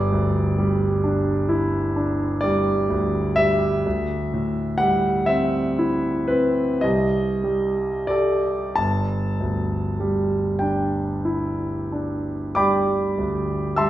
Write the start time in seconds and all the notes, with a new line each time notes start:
Already playing: G1 D5
0.12 D2
0.58 G3
1.04 D4
1.49 E4
1.96 D4
2.41 G3 D5
2.90 D2
3.36 G3 E5
3.86 D2
4.34 A2
4.78 G3 F#5
5.26 C4 E5
5.79 E4
6.28 C4 B4
6.81 C2 D#5
7.44 G3
8.07 G4 A4 D5
8.76 G1 A5
9.40 D2
10.00 G3
10.59 D4 G5
11.25 E4
11.92 D4
12.55 G3 D5 G5 B5 D6
13.18 D2
13.76 G3 E5 A5 C6 E6